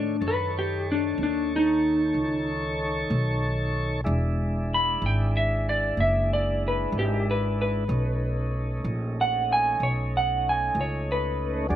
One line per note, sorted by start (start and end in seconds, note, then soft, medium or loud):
0.00 0.18 A2 medium
0.00 0.17 D#3 medium
0.00 0.16 A3 medium
0.00 0.24 D4 medium
0.00 0.17 C#5 medium
0.20 1.15 F#2 medium
0.20 4.01 D#3 medium
0.20 4.01 A4 medium
0.20 4.01 C#5 medium
0.28 0.56 B4 medium
0.59 0.87 G4 medium
0.92 1.20 D4 medium
1.18 2.11 D#2 medium
1.23 1.51 D4 medium
1.56 3.41 D#4 loud
2.14 3.07 C#2 medium
3.10 4.03 B1 medium
4.04 4.99 E1 medium
4.04 7.84 G#3 medium
4.04 7.84 D4 medium
4.04 7.84 E4 medium
4.74 5.03 B5 loud
5.02 5.94 G#1 medium
5.06 5.35 G5 medium
5.37 5.66 E5 loud
5.69 5.98 D5 medium
5.97 6.90 F#1 medium
5.97 6.30 E5 medium
6.33 6.62 D5 medium
6.68 6.95 B4 medium
6.92 7.85 G#1 medium
6.99 7.27 G4 medium
7.31 7.59 B4 medium
7.62 8.83 B4 medium
7.88 8.81 B1 medium
7.88 11.67 A3 medium
7.88 11.67 C#4 medium
7.88 11.67 D#4 medium
8.84 9.77 A#1 medium
9.21 9.49 F#5 loud
9.53 9.81 G#5 loud
9.80 10.73 B1 medium
9.80 10.12 C#5 medium
10.17 10.45 F#5 medium
10.49 10.77 G#5 medium
10.75 11.68 C#2 medium
10.81 11.09 C#5 medium
11.12 11.71 B4 loud
11.69 11.76 E2 medium
11.69 11.76 F#3 medium
11.69 11.76 G#3 soft
11.69 11.76 D4 medium